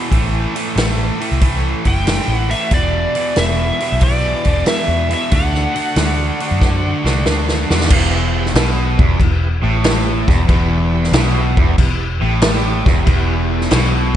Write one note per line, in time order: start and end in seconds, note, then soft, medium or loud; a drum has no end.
0.00 0.11 E2 medium
0.00 0.11 B2 medium
0.00 0.12 E3 medium
0.09 0.45 A1 medium
0.09 0.54 A2 medium
0.09 0.56 E3 medium
0.09 0.41 E4 loud
0.09 0.42 A4 loud
0.09 0.41 C5 loud
0.09 kick medium
0.09 open hi-hat medium
0.13 0.56 A3 loud
0.52 0.75 A2 medium
0.52 0.68 E4 medium
0.52 0.69 A4 medium
0.52 0.69 D5 medium
0.52 open hi-hat soft
0.57 0.76 E3 medium
0.57 0.76 A3 medium
0.73 1.10 A1 medium
0.73 1.19 A2 medium
0.73 1.21 E3 medium
0.73 1.06 E4 medium
0.73 1.06 A4 medium
0.73 1.06 C5 medium
0.77 1.20 A3 loud
0.77 snare loud
0.77 open hi-hat medium
1.15 1.32 E4 medium
1.15 1.33 A4 medium
1.15 1.33 B4 medium
1.20 1.40 A2 medium
1.20 1.40 E3 medium
1.20 1.41 A3 loud
1.20 open hi-hat soft
1.31 1.73 C2 medium
1.39 1.84 A2 medium
1.39 1.85 E3 medium
1.39 1.86 A3 medium
1.39 1.71 E4 loud
1.39 1.72 A4 loud
1.39 1.72 C5 loud
1.39 kick medium
1.39 open hi-hat medium
1.84 2.18 F#1 medium
1.84 2.05 A2 medium
1.84 2.06 E3 medium
1.84 2.07 A3 medium
1.84 2.00 E4 medium
1.84 1.99 A4 medium
1.84 2.00 D5 medium
1.84 kick medium
1.84 open hi-hat soft
1.88 2.35 G5 loud
2.04 2.49 A2 medium
2.04 2.50 E3 medium
2.04 2.36 E4 medium
2.04 2.36 A4 medium
2.04 2.37 C5 medium
2.04 snare loud
2.04 open hi-hat medium
2.08 2.50 A3 loud
2.28 2.53 A1 medium
2.35 2.54 F#5 loud
2.47 2.70 A2 medium
2.47 2.71 E3 medium
2.47 2.64 E4 medium
2.47 2.64 A4 medium
2.47 2.64 C5 medium
2.47 2.72 E5 medium
2.47 open hi-hat soft
2.51 2.71 A3 medium
2.69 3.05 E1 loud
2.69 3.15 E2 medium
2.69 3.16 B2 loud
2.69 3.01 E4 medium
2.69 3.02 G4 medium
2.69 3.02 B4 loud
2.69 kick loud
2.69 open hi-hat medium
2.73 3.16 E3 medium
2.73 3.40 D5 medium
3.15 3.35 E2 medium
3.15 3.36 B2 medium
3.15 3.37 E3 medium
3.15 3.30 E4 medium
3.15 3.30 G4 medium
3.15 3.30 B4 medium
3.15 open hi-hat medium
3.35 3.70 E1 medium
3.35 3.79 E2 medium
3.35 3.79 B2 medium
3.35 3.80 E3 medium
3.35 3.67 E4 medium
3.35 3.67 G4 medium
3.35 3.68 B4 medium
3.35 4.05 E5 medium
3.35 snare loud
3.35 open hi-hat medium
3.80 4.01 E2 medium
3.80 4.01 B2 medium
3.80 4.02 E3 medium
3.80 3.95 E4 medium
3.80 3.95 G4 medium
3.80 3.96 B4 medium
3.80 open hi-hat soft
3.92 4.33 B1 medium
4.01 4.45 E2 medium
4.01 4.45 B2 medium
4.01 4.46 E3 medium
4.01 4.33 E4 medium
4.01 4.33 G4 medium
4.01 4.33 B4 loud
4.01 4.68 D5 medium
4.01 kick loud
4.01 open hi-hat medium
4.44 4.61 E1 medium
4.44 4.64 E2 medium
4.44 4.66 B2 loud
4.44 4.65 E3 medium
4.44 4.60 E4 medium
4.44 4.60 G4 medium
4.44 4.60 B4 medium
4.44 kick medium
4.44 open hi-hat soft
4.65 5.09 E2 medium
4.65 5.09 B2 medium
4.65 5.09 E3 medium
4.65 4.97 E4 medium
4.65 4.97 G4 medium
4.65 4.98 B4 medium
4.65 5.13 E5 medium
4.65 snare loud
4.65 open hi-hat medium
4.88 5.13 E2 medium
5.09 5.30 E2 medium
5.09 5.30 B2 medium
5.09 5.30 E3 medium
5.09 5.25 E4 medium
5.09 5.25 G4 medium
5.09 5.26 B4 medium
5.09 open hi-hat soft
5.14 5.32 E5 medium
5.31 5.65 D2 loud
5.31 5.74 D3 medium
5.31 5.75 A3 medium
5.31 5.62 D4 medium
5.31 5.75 D4 loud
5.31 5.62 F#4 medium
5.31 5.62 A4 loud
5.31 kick loud
5.31 open hi-hat medium
5.36 7.24 F#5 medium
5.55 snare soft
5.75 5.96 D3 medium
5.75 5.97 A3 medium
5.75 5.90 D4 medium
5.75 5.97 D4 medium
5.75 5.90 F#4 medium
5.75 5.90 A4 medium
5.75 open hi-hat soft
5.96 6.30 D2 medium
5.96 6.40 D3 medium
5.96 6.40 A3 medium
5.96 6.27 D4 medium
5.96 6.41 D4 loud
5.96 6.28 F#4 medium
5.96 6.28 A4 medium
5.96 snare loud
5.96 open hi-hat medium
6.39 6.60 D3 medium
6.39 6.61 A3 medium
6.39 6.54 D4 medium
6.39 6.61 D4 medium
6.39 6.55 F#4 medium
6.39 6.55 C5 medium
6.39 open hi-hat soft
6.51 6.92 F#2 medium
6.59 7.04 D3 medium
6.59 7.04 A3 medium
6.59 6.91 D4 loud
6.59 7.04 D4 medium
6.59 6.91 F#4 medium
6.59 6.92 C5 loud
6.59 kick medium
6.59 snare medium
7.01 7.24 C2 medium
7.01 7.24 D3 medium
7.01 7.25 A3 medium
7.01 7.18 D4 medium
7.01 7.18 F#4 medium
7.01 7.19 A4 medium
7.06 7.26 D4 loud
7.06 snare medium
7.22 7.65 D2 medium
7.22 7.69 D3 medium
7.22 7.55 D4 medium
7.22 7.56 F#4 medium
7.22 7.56 B4 medium
7.22 snare medium
7.26 7.70 A3 medium
7.26 7.70 D4 medium
7.48 snare medium
7.69 7.89 E2 medium
7.69 7.90 D3 medium
7.69 7.90 A3 medium
7.69 7.84 D4 medium
7.69 7.90 D4 medium
7.69 7.84 F#4 medium
7.69 7.84 A4 medium
7.69 snare medium
7.81 snare medium
7.85 8.19 E4 loud
7.85 8.19 G4 loud
7.85 8.19 B4 loud
7.90 8.52 E1 loud
7.90 8.55 E2 loud
7.90 kick loud
7.90 crash loud
7.90 crash medium
8.33 8.48 E4 loud
8.33 8.49 G4 loud
8.33 8.50 B4 loud
8.46 snare soft
8.54 8.95 B1 medium
8.54 8.98 B2 loud
8.54 8.86 E4 medium
8.54 8.86 G4 medium
8.54 8.87 B4 medium
8.54 snare loud
8.54 crash medium
8.95 9.12 E4 medium
8.95 9.12 G4 medium
8.95 9.13 B4 medium
8.99 9.19 E1 medium
8.99 9.20 E2 loud
8.99 kick loud
9.16 9.60 E1 medium
9.16 9.48 E4 loud
9.16 9.48 G4 medium
9.16 9.49 B4 loud
9.20 9.55 E2 medium
9.20 kick medium
9.20 crash medium
9.61 10.23 A1 medium
9.61 10.27 A2 loud
9.61 9.77 E4 medium
9.61 9.78 G4 medium
9.61 9.79 B4 loud
9.81 10.13 E4 loud
9.81 10.14 G4 loud
9.81 10.14 B4 loud
9.81 snare loud
9.81 crash medium
10.27 10.47 E1 loud
10.27 10.46 E2 loud
10.27 10.42 E4 medium
10.27 10.43 G4 medium
10.27 10.43 D5 loud
10.27 kick loud
10.27 snare soft
10.46 11.09 E1 loud
10.46 11.12 E2 loud
10.46 10.78 E4 loud
10.46 10.79 G4 loud
10.46 10.79 B4 loud
10.46 kick medium
10.46 crash medium
10.93 11.07 E4 loud
10.93 11.08 G4 loud
10.93 11.08 B4 loud
11.04 snare soft
11.12 11.53 B1 medium
11.12 11.55 B2 loud
11.12 11.45 E4 medium
11.12 11.44 G4 medium
11.12 11.45 B4 loud
11.12 snare loud
11.12 crash medium
11.57 11.76 E1 medium
11.57 11.77 E2 loud
11.57 11.71 E4 medium
11.57 11.72 G4 medium
11.57 11.72 B4 loud
11.57 kick loud
11.78 12.19 E1 medium
11.78 12.13 E2 medium
11.78 12.09 E4 medium
11.78 12.09 G4 medium
11.78 12.09 B4 loud
11.78 kick medium
11.78 crash medium
12.20 12.82 A1 medium
12.20 12.84 A2 loud
12.20 12.35 E4 medium
12.20 12.36 G4 medium
12.20 12.36 A4 loud
12.42 12.73 E4 loud
12.42 12.73 G4 loud
12.42 12.73 D5 loud
12.42 snare loud
12.42 crash medium
12.85 13.05 E1 loud
12.85 13.04 E2 loud
12.85 13.00 E4 medium
12.85 13.01 G4 medium
12.85 13.01 B4 loud
12.85 kick loud
12.85 snare soft
13.03 13.67 E1 loud
13.03 13.70 E2 loud
13.03 13.35 E4 loud
13.03 13.35 G4 loud
13.03 13.36 B4 loud
13.03 kick medium
13.03 crash medium
13.50 13.64 E4 loud
13.50 13.65 G4 loud
13.50 13.65 A4 loud
13.61 snare soft
13.70 14.12 B1 loud
13.70 14.13 B2 loud
13.70 14.02 E4 medium
13.70 14.02 G4 medium
13.70 14.03 B4 loud
13.70 snare loud
13.70 crash medium